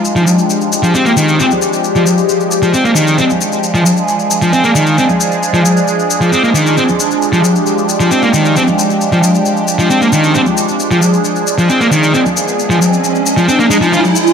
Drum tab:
SH |xxxxxxxxxxxxxxxx|xxxxxxxxxxxxxxxx|xxxxxxxxxxxxxxxx|xxxxxxxxxxxxxxxx|

SH |xxxxxxxxxxxxxxxx|xxxxxxxxxxxxxxxx|xxxxxxxxxxxxxxxx|xxxxxxxxxxxxxxxx|